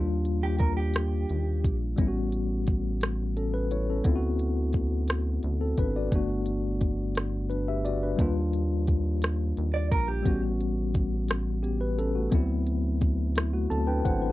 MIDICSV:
0, 0, Header, 1, 5, 480
1, 0, Start_track
1, 0, Tempo, 689655
1, 1377, Time_signature, 6, 3, 24, 8
1, 9968, End_track
2, 0, Start_track
2, 0, Title_t, "Clean electric guitar"
2, 0, Program_c, 0, 27
2, 301, Note_on_c, 0, 67, 66
2, 411, Note_off_c, 0, 67, 0
2, 414, Note_on_c, 0, 70, 65
2, 529, Note_off_c, 0, 70, 0
2, 534, Note_on_c, 0, 67, 62
2, 1228, Note_off_c, 0, 67, 0
2, 6778, Note_on_c, 0, 74, 64
2, 6891, Note_off_c, 0, 74, 0
2, 6901, Note_on_c, 0, 70, 76
2, 7013, Note_off_c, 0, 70, 0
2, 7015, Note_on_c, 0, 67, 66
2, 7244, Note_off_c, 0, 67, 0
2, 9968, End_track
3, 0, Start_track
3, 0, Title_t, "Tine electric piano"
3, 0, Program_c, 1, 4
3, 0, Note_on_c, 1, 55, 65
3, 0, Note_on_c, 1, 58, 59
3, 0, Note_on_c, 1, 62, 60
3, 0, Note_on_c, 1, 65, 72
3, 72, Control_c, 1, 64, 127
3, 1341, Note_off_c, 1, 55, 0
3, 1348, Note_off_c, 1, 58, 0
3, 1352, Note_off_c, 1, 62, 0
3, 1360, Note_off_c, 1, 65, 0
3, 1366, Note_on_c, 1, 55, 64
3, 1379, Note_on_c, 1, 59, 61
3, 1387, Control_c, 1, 64, 0
3, 1389, Note_on_c, 1, 61, 60
3, 1403, Note_on_c, 1, 64, 60
3, 1435, Note_off_c, 1, 64, 0
3, 1449, Note_on_c, 1, 66, 67
3, 1489, Control_c, 1, 64, 127
3, 2324, Note_off_c, 1, 61, 0
3, 2345, Note_on_c, 1, 69, 54
3, 2350, Note_on_c, 1, 61, 46
3, 2355, Note_off_c, 1, 66, 0
3, 2455, Note_off_c, 1, 69, 0
3, 2458, Note_off_c, 1, 61, 0
3, 2462, Note_on_c, 1, 71, 62
3, 2574, Note_off_c, 1, 71, 0
3, 2586, Note_on_c, 1, 73, 60
3, 2587, Note_on_c, 1, 64, 51
3, 2696, Note_off_c, 1, 64, 0
3, 2696, Note_off_c, 1, 73, 0
3, 2713, Note_on_c, 1, 69, 52
3, 2716, Note_on_c, 1, 61, 46
3, 2784, Note_off_c, 1, 55, 0
3, 2790, Note_off_c, 1, 59, 0
3, 2811, Note_on_c, 1, 59, 68
3, 2825, Note_on_c, 1, 60, 61
3, 2827, Control_c, 1, 64, 0
3, 2837, Note_on_c, 1, 64, 60
3, 2849, Note_on_c, 1, 65, 57
3, 2878, Note_off_c, 1, 65, 0
3, 2892, Note_on_c, 1, 66, 75
3, 2933, Note_off_c, 1, 69, 0
3, 2935, Note_off_c, 1, 61, 0
3, 2949, Control_c, 1, 64, 127
3, 3755, Note_off_c, 1, 59, 0
3, 3762, Note_off_c, 1, 60, 0
3, 3768, Note_off_c, 1, 64, 0
3, 3796, Note_off_c, 1, 66, 0
3, 3904, Note_on_c, 1, 60, 51
3, 3905, Note_on_c, 1, 69, 56
3, 4015, Note_off_c, 1, 60, 0
3, 4015, Note_off_c, 1, 69, 0
3, 4031, Note_on_c, 1, 71, 62
3, 4037, Note_on_c, 1, 62, 50
3, 4138, Note_off_c, 1, 71, 0
3, 4142, Note_off_c, 1, 62, 0
3, 4150, Note_on_c, 1, 74, 57
3, 4156, Note_on_c, 1, 66, 43
3, 4253, Note_on_c, 1, 57, 61
3, 4264, Note_on_c, 1, 59, 57
3, 4268, Control_c, 1, 64, 0
3, 4274, Note_on_c, 1, 62, 60
3, 4276, Note_off_c, 1, 66, 0
3, 4285, Note_on_c, 1, 66, 67
3, 4372, Note_off_c, 1, 74, 0
3, 4390, Control_c, 1, 64, 127
3, 5207, Note_off_c, 1, 62, 0
3, 5212, Note_off_c, 1, 66, 0
3, 5218, Note_on_c, 1, 71, 57
3, 5224, Note_on_c, 1, 62, 47
3, 5331, Note_off_c, 1, 71, 0
3, 5335, Note_off_c, 1, 62, 0
3, 5347, Note_on_c, 1, 76, 62
3, 5353, Note_on_c, 1, 67, 53
3, 5457, Note_off_c, 1, 76, 0
3, 5460, Note_off_c, 1, 67, 0
3, 5462, Note_on_c, 1, 74, 62
3, 5466, Note_on_c, 1, 66, 51
3, 5574, Note_off_c, 1, 74, 0
3, 5576, Note_off_c, 1, 66, 0
3, 5589, Note_on_c, 1, 71, 53
3, 5591, Note_on_c, 1, 62, 47
3, 5667, Note_off_c, 1, 57, 0
3, 5673, Note_off_c, 1, 59, 0
3, 5680, Note_on_c, 1, 55, 68
3, 5691, Note_on_c, 1, 58, 60
3, 5696, Note_off_c, 1, 62, 0
3, 5705, Note_on_c, 1, 62, 57
3, 5708, Control_c, 1, 64, 0
3, 5717, Note_on_c, 1, 65, 74
3, 5811, Note_off_c, 1, 71, 0
3, 5840, Control_c, 1, 64, 127
3, 7101, Note_off_c, 1, 55, 0
3, 7107, Note_off_c, 1, 58, 0
3, 7113, Note_off_c, 1, 62, 0
3, 7118, Note_on_c, 1, 55, 66
3, 7119, Note_off_c, 1, 65, 0
3, 7131, Note_on_c, 1, 59, 64
3, 7142, Note_on_c, 1, 61, 60
3, 7147, Control_c, 1, 64, 0
3, 7153, Note_on_c, 1, 66, 72
3, 7259, Control_c, 1, 64, 127
3, 7840, Note_off_c, 1, 59, 0
3, 7845, Note_off_c, 1, 61, 0
3, 7851, Note_off_c, 1, 66, 0
3, 8093, Note_on_c, 1, 67, 56
3, 8099, Note_on_c, 1, 59, 44
3, 8209, Note_off_c, 1, 67, 0
3, 8212, Note_off_c, 1, 59, 0
3, 8218, Note_on_c, 1, 71, 64
3, 8332, Note_off_c, 1, 71, 0
3, 8342, Note_on_c, 1, 69, 64
3, 8348, Note_on_c, 1, 61, 53
3, 8454, Note_off_c, 1, 69, 0
3, 8457, Note_off_c, 1, 61, 0
3, 8458, Note_on_c, 1, 66, 53
3, 8465, Note_on_c, 1, 57, 47
3, 8540, Note_off_c, 1, 55, 0
3, 8560, Note_on_c, 1, 54, 66
3, 8570, Note_on_c, 1, 59, 62
3, 8581, Note_on_c, 1, 60, 65
3, 8586, Control_c, 1, 64, 0
3, 8593, Note_on_c, 1, 64, 73
3, 8686, Note_off_c, 1, 66, 0
3, 8689, Note_off_c, 1, 57, 0
3, 8719, Control_c, 1, 64, 127
3, 9279, Note_off_c, 1, 59, 0
3, 9285, Note_off_c, 1, 60, 0
3, 9291, Note_off_c, 1, 64, 0
3, 9300, Note_on_c, 1, 64, 53
3, 9412, Note_off_c, 1, 64, 0
3, 9420, Note_on_c, 1, 66, 60
3, 9424, Note_on_c, 1, 57, 46
3, 9532, Note_off_c, 1, 66, 0
3, 9535, Note_off_c, 1, 57, 0
3, 9537, Note_on_c, 1, 69, 58
3, 9537, Note_on_c, 1, 81, 59
3, 9542, Note_on_c, 1, 60, 53
3, 9649, Note_off_c, 1, 81, 0
3, 9651, Note_off_c, 1, 69, 0
3, 9654, Note_off_c, 1, 60, 0
3, 9654, Note_on_c, 1, 71, 65
3, 9657, Note_on_c, 1, 79, 62
3, 9661, Note_on_c, 1, 62, 53
3, 9769, Note_off_c, 1, 79, 0
3, 9770, Note_off_c, 1, 71, 0
3, 9773, Note_off_c, 1, 62, 0
3, 9777, Note_on_c, 1, 78, 65
3, 9781, Note_on_c, 1, 72, 61
3, 9784, Note_on_c, 1, 64, 50
3, 9893, Note_off_c, 1, 72, 0
3, 9895, Note_off_c, 1, 64, 0
3, 9896, Note_on_c, 1, 71, 50
3, 9904, Note_on_c, 1, 62, 44
3, 9968, Note_off_c, 1, 54, 0
3, 9968, Note_off_c, 1, 62, 0
3, 9968, Note_off_c, 1, 71, 0
3, 9968, Note_off_c, 1, 78, 0
3, 9968, End_track
4, 0, Start_track
4, 0, Title_t, "Analog synth bass"
4, 0, Program_c, 2, 38
4, 0, Note_on_c, 2, 39, 94
4, 871, Note_off_c, 2, 39, 0
4, 907, Note_on_c, 2, 39, 81
4, 1149, Note_on_c, 2, 34, 83
4, 1160, Note_off_c, 2, 39, 0
4, 1360, Note_off_c, 2, 34, 0
4, 1384, Note_on_c, 2, 33, 95
4, 2793, Note_off_c, 2, 33, 0
4, 2824, Note_on_c, 2, 38, 91
4, 3753, Note_off_c, 2, 38, 0
4, 3785, Note_on_c, 2, 38, 87
4, 3997, Note_off_c, 2, 38, 0
4, 4027, Note_on_c, 2, 32, 86
4, 4239, Note_off_c, 2, 32, 0
4, 4263, Note_on_c, 2, 31, 93
4, 5672, Note_off_c, 2, 31, 0
4, 5704, Note_on_c, 2, 39, 96
4, 6633, Note_off_c, 2, 39, 0
4, 6667, Note_on_c, 2, 39, 86
4, 6906, Note_on_c, 2, 34, 85
4, 6917, Note_off_c, 2, 39, 0
4, 7118, Note_off_c, 2, 34, 0
4, 7141, Note_on_c, 2, 33, 94
4, 8551, Note_off_c, 2, 33, 0
4, 8580, Note_on_c, 2, 38, 93
4, 9511, Note_off_c, 2, 38, 0
4, 9543, Note_on_c, 2, 38, 89
4, 9756, Note_off_c, 2, 38, 0
4, 9785, Note_on_c, 2, 32, 86
4, 9968, Note_off_c, 2, 32, 0
4, 9968, End_track
5, 0, Start_track
5, 0, Title_t, "Drums"
5, 175, Note_on_c, 9, 42, 43
5, 244, Note_off_c, 9, 42, 0
5, 408, Note_on_c, 9, 42, 41
5, 418, Note_on_c, 9, 36, 68
5, 478, Note_off_c, 9, 42, 0
5, 488, Note_off_c, 9, 36, 0
5, 652, Note_on_c, 9, 42, 52
5, 666, Note_on_c, 9, 37, 91
5, 721, Note_off_c, 9, 42, 0
5, 736, Note_off_c, 9, 37, 0
5, 901, Note_on_c, 9, 42, 38
5, 970, Note_off_c, 9, 42, 0
5, 1144, Note_on_c, 9, 36, 83
5, 1147, Note_on_c, 9, 42, 45
5, 1214, Note_off_c, 9, 36, 0
5, 1217, Note_off_c, 9, 42, 0
5, 1376, Note_on_c, 9, 42, 60
5, 1379, Note_on_c, 9, 36, 98
5, 1446, Note_off_c, 9, 42, 0
5, 1449, Note_off_c, 9, 36, 0
5, 1617, Note_on_c, 9, 42, 47
5, 1687, Note_off_c, 9, 42, 0
5, 1857, Note_on_c, 9, 42, 44
5, 1863, Note_on_c, 9, 36, 72
5, 1926, Note_off_c, 9, 42, 0
5, 1932, Note_off_c, 9, 36, 0
5, 2095, Note_on_c, 9, 42, 57
5, 2110, Note_on_c, 9, 37, 91
5, 2165, Note_off_c, 9, 42, 0
5, 2180, Note_off_c, 9, 37, 0
5, 2344, Note_on_c, 9, 42, 37
5, 2414, Note_off_c, 9, 42, 0
5, 2582, Note_on_c, 9, 42, 44
5, 2652, Note_off_c, 9, 42, 0
5, 2814, Note_on_c, 9, 42, 62
5, 2818, Note_on_c, 9, 36, 92
5, 2884, Note_off_c, 9, 42, 0
5, 2888, Note_off_c, 9, 36, 0
5, 3058, Note_on_c, 9, 42, 49
5, 3127, Note_off_c, 9, 42, 0
5, 3291, Note_on_c, 9, 42, 41
5, 3300, Note_on_c, 9, 36, 69
5, 3361, Note_off_c, 9, 42, 0
5, 3369, Note_off_c, 9, 36, 0
5, 3534, Note_on_c, 9, 42, 57
5, 3549, Note_on_c, 9, 37, 95
5, 3604, Note_off_c, 9, 42, 0
5, 3619, Note_off_c, 9, 37, 0
5, 3778, Note_on_c, 9, 42, 36
5, 3848, Note_off_c, 9, 42, 0
5, 4019, Note_on_c, 9, 42, 44
5, 4022, Note_on_c, 9, 36, 78
5, 4089, Note_off_c, 9, 42, 0
5, 4091, Note_off_c, 9, 36, 0
5, 4259, Note_on_c, 9, 36, 89
5, 4259, Note_on_c, 9, 42, 61
5, 4328, Note_off_c, 9, 42, 0
5, 4329, Note_off_c, 9, 36, 0
5, 4495, Note_on_c, 9, 42, 47
5, 4565, Note_off_c, 9, 42, 0
5, 4738, Note_on_c, 9, 42, 42
5, 4741, Note_on_c, 9, 36, 70
5, 4808, Note_off_c, 9, 42, 0
5, 4811, Note_off_c, 9, 36, 0
5, 4978, Note_on_c, 9, 42, 55
5, 4993, Note_on_c, 9, 37, 90
5, 5047, Note_off_c, 9, 42, 0
5, 5062, Note_off_c, 9, 37, 0
5, 5225, Note_on_c, 9, 42, 35
5, 5294, Note_off_c, 9, 42, 0
5, 5467, Note_on_c, 9, 42, 43
5, 5537, Note_off_c, 9, 42, 0
5, 5699, Note_on_c, 9, 36, 99
5, 5699, Note_on_c, 9, 42, 59
5, 5768, Note_off_c, 9, 36, 0
5, 5769, Note_off_c, 9, 42, 0
5, 5939, Note_on_c, 9, 42, 48
5, 6009, Note_off_c, 9, 42, 0
5, 6176, Note_on_c, 9, 42, 45
5, 6181, Note_on_c, 9, 36, 71
5, 6246, Note_off_c, 9, 42, 0
5, 6251, Note_off_c, 9, 36, 0
5, 6416, Note_on_c, 9, 42, 59
5, 6431, Note_on_c, 9, 37, 95
5, 6486, Note_off_c, 9, 42, 0
5, 6501, Note_off_c, 9, 37, 0
5, 6663, Note_on_c, 9, 42, 37
5, 6732, Note_off_c, 9, 42, 0
5, 6901, Note_on_c, 9, 36, 82
5, 6903, Note_on_c, 9, 42, 45
5, 6971, Note_off_c, 9, 36, 0
5, 6973, Note_off_c, 9, 42, 0
5, 7137, Note_on_c, 9, 36, 96
5, 7138, Note_on_c, 9, 42, 64
5, 7207, Note_off_c, 9, 36, 0
5, 7208, Note_off_c, 9, 42, 0
5, 7381, Note_on_c, 9, 42, 44
5, 7451, Note_off_c, 9, 42, 0
5, 7616, Note_on_c, 9, 42, 42
5, 7620, Note_on_c, 9, 36, 70
5, 7686, Note_off_c, 9, 42, 0
5, 7689, Note_off_c, 9, 36, 0
5, 7854, Note_on_c, 9, 42, 52
5, 7869, Note_on_c, 9, 37, 96
5, 7924, Note_off_c, 9, 42, 0
5, 7938, Note_off_c, 9, 37, 0
5, 8101, Note_on_c, 9, 42, 38
5, 8171, Note_off_c, 9, 42, 0
5, 8342, Note_on_c, 9, 42, 47
5, 8412, Note_off_c, 9, 42, 0
5, 8574, Note_on_c, 9, 42, 63
5, 8575, Note_on_c, 9, 36, 94
5, 8643, Note_off_c, 9, 42, 0
5, 8645, Note_off_c, 9, 36, 0
5, 8816, Note_on_c, 9, 42, 48
5, 8886, Note_off_c, 9, 42, 0
5, 9056, Note_on_c, 9, 42, 41
5, 9059, Note_on_c, 9, 36, 69
5, 9126, Note_off_c, 9, 42, 0
5, 9129, Note_off_c, 9, 36, 0
5, 9296, Note_on_c, 9, 42, 56
5, 9311, Note_on_c, 9, 37, 98
5, 9365, Note_off_c, 9, 42, 0
5, 9380, Note_off_c, 9, 37, 0
5, 9546, Note_on_c, 9, 42, 40
5, 9615, Note_off_c, 9, 42, 0
5, 9780, Note_on_c, 9, 36, 80
5, 9782, Note_on_c, 9, 42, 44
5, 9850, Note_off_c, 9, 36, 0
5, 9852, Note_off_c, 9, 42, 0
5, 9968, End_track
0, 0, End_of_file